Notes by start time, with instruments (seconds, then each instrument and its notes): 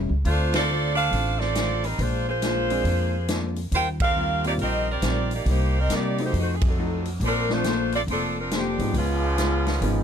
Already playing: hollow-body jazz guitar A2 G3 C#4 E4, saxophone section G3 C#4 E4 A4
0.09 upright bass C#2
0.25 upright bass D2, hollow-body jazz guitar D3 A3 C4 F4, saxophone section A3 D4 F4 C5, grand piano A3 C4 D4 F4, kick, open hi-hat
0.54 saxophone section C4 F4 A4 D5, snare, ride
0.71 hollow-body jazz guitar D3 A3 C4 F4
0.95 saxophone section D4 A4 C5 F5, open hi-hat
1.12 upright bass A1, hollow-body jazz guitar D3 A3 C4, kick, open hi-hat
1.16 hollow-body jazz guitar F4
1.39 saxophone section C4 F4 A4 D5, snare
1.55 hollow-body jazz guitar D3 A3 C4 F4, snare, closed hi-hat
1.84 saxophone section G3 C4 D#4 A#4, open hi-hat
1.99 upright bass A#1, hollow-body jazz guitar A#2 G#3 D4 F4, saxophone section G#3 D4 F4 C5, kick, open hi-hat
2.28 saxophone section A#3 F4 G#4 C5
2.42 hollow-body jazz guitar A#2 G#3 D4 F4, snare, closed hi-hat
2.70 grand piano G#3 C4 D4 F4, open hi-hat
2.84 upright bass F2, hollow-body jazz guitar A#2 G#3 D4 F4, kick, open hi-hat
3.28 hollow-body jazz guitar A#2 G#3 D4 F4, snare, closed hi-hat
3.56 open hi-hat
3.72 upright bass D#2, hollow-body jazz guitar D#3 G3 C4 F4, saxophone section F4 A#4 C5 G5, kick, open hi-hat
4.00 saxophone section C4 G4 A#4 F5, kick, ride
4.16 hollow-body jazz guitar D#3 G3 C4 F4
4.44 grand piano G3 A#3 C4 F4, saxophone section A#3 D#4 G4 D5, open hi-hat
4.58 upright bass A#1, hollow-body jazz guitar D#3 G3 C4 F4, saxophone section C4 G4 A#4 D#5, kick, open hi-hat
4.90 saxophone section C4 G4 A#4 D5
5.02 upright bass A#1, hollow-body jazz guitar D#3 G3 C4 F4, snare, closed hi-hat
5.31 saxophone section A#3 D#4 G4 D5, open hi-hat
5.46 upright bass C2, hollow-body jazz guitar C3 G3 A#3 D#4, saxophone section A#3 D#4 G4 C5, kick, open hi-hat
5.78 saxophone section C4 G4 A#4 D#5
5.89 upright bass C3, hollow-body jazz guitar C3 G3 A#3 D#4, snare, closed hi-hat
5.94 saxophone section A#3 D#4 G4 D5
6.18 grand piano F#3 A3 C4 D#4, open hi-hat
6.24 saxophone section A#3 D#4 G4 C5
6.33 upright bass F2, hollow-body jazz guitar F3 A3 D#4 F#4, kick, open hi-hat
6.39 saxophone section A3 D#4 F#4 C5
6.55 saxophone section G#4
6.61 kick, ride
6.67 saxophone section F#3 C4 D#4 A4
6.78 hollow-body jazz guitar F3 A3 D#4 F#4
7.05 open hi-hat
7.20 upright bass A#1, hollow-body jazz guitar A#3 D4 A4 C5, kick, open hi-hat
7.25 saxophone section F3 C4 D4 A#4
7.49 grand piano F3 A3 C4 D4, saxophone section A3 D4 F4 C5, snare
7.64 hollow-body jazz guitar A#3 D4 A4 C5, snare, closed hi-hat
7.92 saxophone section C4 F4 A4 D5, open hi-hat
8.07 upright bass F1, saxophone section F3 C4 A4, hollow-body jazz guitar A#3 D4 A4, kick, open hi-hat
8.11 saxophone section D4, hollow-body jazz guitar C5
8.38 saxophone section F3 C4 D4 A#4
8.51 saxophone section F3 C4 D4 G4, hollow-body jazz guitar A#3 D4 A4 C5, snare, closed hi-hat
8.78 upright bass G#2, grand piano F3 G#3 B3 D#4, open hi-hat
8.94 upright bass C#2, trombone section G#2 B2 F3, hollow-body jazz guitar C#3 G#3 B3, saxophone section G#3 B3 C#4 F4, kick, open hi-hat
8.98 hollow-body jazz guitar F4
9.38 hollow-body jazz guitar C#3 G#3 B3 F4, snare, closed hi-hat
9.66 snare, open hi-hat
9.81 upright bass G#1, hollow-body jazz guitar C#3 G#3 B3 F4, grand piano F3 G#3 B3 D#4, kick, open hi-hat